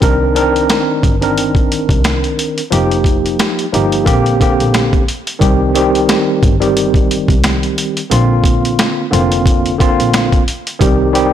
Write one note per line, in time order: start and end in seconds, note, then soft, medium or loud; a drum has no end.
0.01 0.61 C2 loud
0.01 0.33 D#3 medium
0.01 0.33 C4 medium
0.01 0.33 D4 medium
0.01 0.34 A#4 loud
0.01 kick loud
0.01 closed hi-hat loud
0.35 1.14 D#3 medium
0.35 1.14 C4 medium
0.35 1.15 D4 medium
0.35 1.15 A#4 loud
0.35 closed hi-hat medium
0.56 closed hi-hat soft
0.70 snare loud
0.70 snare medium
0.70 closed hi-hat medium
1.03 1.86 G1 medium
1.03 kick loud
1.03 closed hi-hat medium
1.21 2.61 D#3 medium
1.21 2.61 C4 medium
1.21 2.61 D4 medium
1.21 2.62 A#4 loud
1.21 closed hi-hat soft
1.38 closed hi-hat medium
1.55 kick loud
1.55 closed hi-hat soft
1.72 closed hi-hat medium
1.89 2.19 C2 medium
1.89 kick loud
1.89 closed hi-hat medium
2.04 snare loud
2.04 snare medium
2.04 closed hi-hat medium
2.24 closed hi-hat soft
2.39 closed hi-hat medium
2.58 closed hi-hat medium
2.71 3.31 F1 loud
2.71 3.65 F3 medium
2.71 3.66 A#3 medium
2.71 3.66 D#4 medium
2.71 3.66 G4 loud
2.71 closed hi-hat loud
2.91 closed hi-hat soft
3.04 kick medium
3.04 closed hi-hat medium
3.26 closed hi-hat soft
3.39 snare loud
3.39 snare medium
3.39 closed hi-hat medium
3.59 closed hi-hat soft
3.72 4.02 G1 medium
3.72 4.06 F3 medium
3.72 4.04 A#3 medium
3.72 4.07 D#4 medium
3.72 4.06 G4 loud
3.72 closed hi-hat medium
3.92 closed hi-hat soft
4.05 4.52 A#1 loud
4.05 4.37 D3 loud
4.05 4.37 A#3 medium
4.05 4.38 C4 medium
4.05 4.38 G4 loud
4.05 kick loud
4.05 closed hi-hat medium
4.26 closed hi-hat soft
4.39 5.03 D3 medium
4.39 5.03 A#3 medium
4.39 5.03 C4 medium
4.39 5.04 G4 loud
4.39 kick loud
4.39 closed hi-hat medium
4.60 4.89 A#1 medium
4.60 closed hi-hat medium
4.74 snare loud
4.74 snare medium
4.74 closed hi-hat medium
4.93 kick medium
4.93 closed hi-hat soft
5.08 closed hi-hat medium
5.27 closed hi-hat medium
5.39 6.00 C2 loud
5.39 5.72 D#3 loud
5.39 5.72 G3 medium
5.39 5.72 C4 medium
5.39 5.73 G4 loud
5.39 kick loud
5.39 closed hi-hat loud
5.74 6.54 D#3 loud
5.74 6.54 G3 medium
5.74 6.54 C4 medium
5.74 6.55 G4 loud
5.74 closed hi-hat medium
5.95 closed hi-hat medium
6.09 snare loud
6.09 closed hi-hat medium
6.43 7.25 G1 medium
6.43 kick loud
6.43 closed hi-hat medium
6.60 8.00 D#3 medium
6.60 8.00 G3 medium
6.60 8.00 C4 medium
6.60 8.01 G4 loud
6.60 closed hi-hat medium
6.77 closed hi-hat medium
6.94 kick loud
6.94 closed hi-hat soft
7.11 closed hi-hat medium
7.28 7.58 C2 medium
7.28 kick loud
7.28 closed hi-hat medium
7.44 snare loud
7.44 snare medium
7.44 closed hi-hat medium
7.63 closed hi-hat soft
7.78 closed hi-hat medium
7.97 closed hi-hat medium
8.10 8.70 A#1 loud
8.10 9.04 D3 medium
8.10 9.05 A#3 medium
8.10 9.05 C4 medium
8.10 9.06 F4 loud
8.10 closed hi-hat loud
8.44 kick medium
8.44 closed hi-hat medium
8.65 closed hi-hat soft
8.79 snare loud
8.79 closed hi-hat medium
9.11 9.95 F1 loud
9.11 9.74 D3 loud
9.11 9.75 A#3 medium
9.11 9.75 C4 medium
9.11 9.75 F4 loud
9.11 closed hi-hat medium
9.32 closed hi-hat medium
9.46 kick loud
9.46 closed hi-hat medium
9.66 closed hi-hat soft
9.79 10.42 D3 medium
9.79 10.42 A#3 medium
9.79 10.43 C4 medium
9.79 10.43 F4 loud
9.79 kick loud
9.79 closed hi-hat medium
9.99 10.28 A#1 medium
9.99 closed hi-hat medium
10.14 snare loud
10.14 snare medium
10.14 closed hi-hat medium
10.33 kick medium
10.33 closed hi-hat soft
10.48 closed hi-hat medium
10.67 closed hi-hat medium
10.79 11.33 C2 loud
10.79 11.11 D#3 loud
10.79 11.12 G3 medium
10.79 11.12 C4 medium
10.79 11.12 G4 loud
10.79 kick loud
10.79 closed hi-hat loud
11.13 11.33 D#3 medium
11.13 11.33 G3 medium
11.13 11.33 C4 medium
11.13 11.33 G4 loud
11.13 closed hi-hat medium